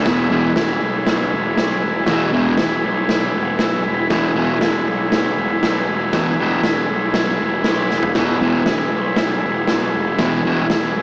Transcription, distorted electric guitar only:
0.06 0.26 E2 loud
0.06 0.26 B2 loud
0.06 0.27 E3 loud
0.30 0.51 E2 medium
0.30 0.51 B2 loud
0.30 0.52 E3 loud
2.09 2.28 E2 medium
2.09 2.29 B2 medium
2.09 2.30 E3 loud
2.33 2.53 E2 loud
2.33 2.54 B2 loud
2.33 2.54 E3 loud
4.10 4.30 E2 medium
4.10 4.31 B2 loud
4.10 4.31 E3 loud
4.36 4.56 E2 medium
4.36 4.56 B2 medium
4.36 4.57 E3 medium
6.14 6.33 E2 loud
6.14 6.34 B2 loud
6.14 6.34 E3 loud
6.40 6.59 E2 medium
6.40 6.59 B2 medium
6.40 6.60 E3 loud
8.18 8.37 E2 medium
8.18 8.37 B2 loud
8.18 8.38 E3 loud
8.41 8.62 E2 medium
8.41 8.62 B2 loud
8.41 8.62 E3 loud
10.19 10.40 E2 medium
10.19 10.40 B2 loud
10.19 10.41 E3 loud
10.45 10.65 E2 medium
10.45 10.66 B2 loud
10.45 10.66 E3 loud

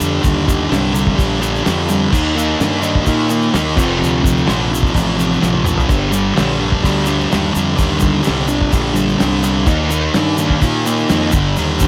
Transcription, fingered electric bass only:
0.01 0.22 F2 loud
0.25 0.66 D#2 medium
0.72 1.13 C2 medium
1.19 1.60 A#1 loud
1.67 2.08 F2 medium
2.13 2.54 D#2 medium
2.60 3.01 G2 medium
3.07 3.48 A#2 loud
3.55 3.80 D#2 medium
3.78 3.99 F1 loud
4.02 4.43 D2 loud
4.49 4.90 A#1 medium
4.95 5.36 A1 loud
5.43 5.84 A#1 loud
5.90 6.31 G1 medium
6.39 6.79 A#1 medium
6.84 7.26 D2 medium
7.34 7.54 D#2 medium
7.56 7.76 F2 loud
7.79 8.20 D#2 loud
8.29 8.69 C2 medium
8.74 9.15 A#1 loud
9.22 9.67 C2 medium
9.67 10.08 D#2 loud
10.14 10.56 G2 medium
10.63 11.04 A#2 loud
11.11 11.31 F2 medium
11.34 11.54 G1 medium
11.59 11.88 D#2 loud

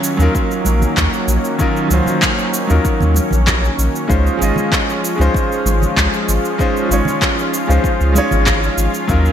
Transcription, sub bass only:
0.19 0.28 D#2 loud
0.65 0.85 A#1 medium
0.97 1.07 D#2 medium
1.27 1.38 A#1 medium
1.90 2.01 C#2 medium
2.70 2.79 D#2 loud
3.01 3.20 D#2 medium
3.32 3.69 A#1 medium
3.78 3.88 A#1 medium
4.09 4.29 C#2 medium
4.41 4.51 G#1 medium
5.19 5.29 C#2 loud
5.65 5.85 G#1 medium
5.97 6.07 C#2 medium
6.28 6.38 G#1 medium
6.90 7.01 G#1 medium
7.69 7.78 C#2 loud
8.00 8.19 C#2 loud
8.32 8.69 G#1 medium
8.77 8.88 G#1 medium
9.09 9.29 D#2 loud

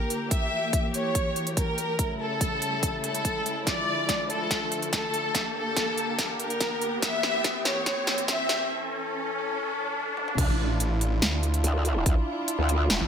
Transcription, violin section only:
0.00 0.23 A#4 medium
0.31 0.86 E5 loud
0.94 1.49 C#5 loud
1.57 2.12 A#4 loud
2.20 2.96 A4 loud
3.04 3.59 A4 loud
3.67 4.22 D5 loud
4.30 4.85 A4 loud
4.93 5.47 A4 loud
5.56 6.31 A4 loud
6.39 6.94 A#4 loud
7.02 7.57 E5 loud
7.65 8.20 C#5 loud
8.28 8.70 E5 loud

